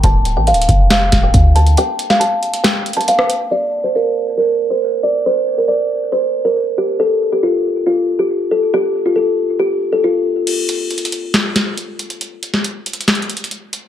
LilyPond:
<<
  \new Staff \with { instrumentName = "Kalimba" } { \time 4/4 \key d \phrygian \tempo 4 = 138 a''8. g''16 f''4 f''8. g''8. a''8 | g''8. f''16 a''4 g''8. a''16 f''8 r8 | d''8. c''16 bes'4 bes'8. c''8. d''8 | c''8. bes'16 d''4 c''8. bes'8. g'8 |
a'8. g'16 f'4 f'8. g'8. a'8 | g'8. f'16 a'4 g'8. a'16 f'8 r8 | r1 | r1 | }
  \new Staff \with { instrumentName = "808-style bass" } { \clef bass \time 4/4 \key d \phrygian d,,8. a,,16. d,,16. f,,4 d,,8 d,4 | r1 | r1 | r1 |
r1 | r1 | r1 | r1 | }
  \new DrumStaff \with { instrumentName = "Drums" } \drummode { \time 4/4 <hh bd>8 hh8 \tuplet 3/2 { hh16 hh16 hh16 <hh bd>16 r16 r16 } <hh sn>8 <hh bd sn>8 <hh bd>8 hh16 hh16 | hh8 hh16 sn16 hh8 hh16 hh16 \tuplet 3/2 { <hh sn>16 r16 r16 hh16 hh16 hh16 } hh16 ss16 hh8 | r4 r4 r4 r4 | r4 r4 r4 r4 |
r4 r4 r4 r4 | r4 r4 r4 r4 | <cymc hh>8 hh8 \tuplet 3/2 { hh16 hh16 hh16 hh16 r16 r16 } <hh sn>8 <hh sn>8 hh8 hh16 hh16 | hh8 hh16 sn16 \tuplet 3/2 { hh16 r16 r16 hh16 hh16 hh16 <hh sn>16 hh16 hh16 hh16 hh16 hh16 } hh8 hh8 | }
>>